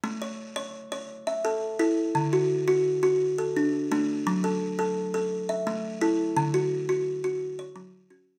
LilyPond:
\new Staff \with { instrumentName = "Kalimba" } { \time 12/8 \key a \major \tempo 4. = 114 << { r8 cis''4. r4. e''4. a'4~ | a'8 fis'4. r4. a'4. d'4~ | d'8 a'4. r4. e''4. a'4~ | a'8 fis'4. r4. cis''4. fis'4 | } \\ { a4 r8 cis''4 cis''4 r8 a'4 e'4 | d4 r8 fis'4 fis'4 r8 d'4 a4 | fis4 r8 a'4 a'8 r4 a4 e'4 | d4 r8 fis'4 fis'8 r4 fis4 cis'4 | } >> }